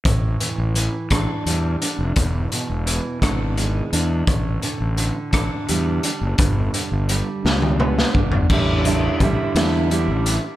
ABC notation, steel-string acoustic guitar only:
X:1
M:6/8
L:1/8
Q:3/8=57
K:Edor
V:1 name="Steel-string acoustic guitar" clef=bass
A,, E, E, D G, D | E,, B,, E, D ^G, D | A,, D, D, D G, D | G,, D, G, D B, D |
[D,G,DE] [D,G,DE] [D,G,DE] [D,G,DE] [D,G,DE] z |]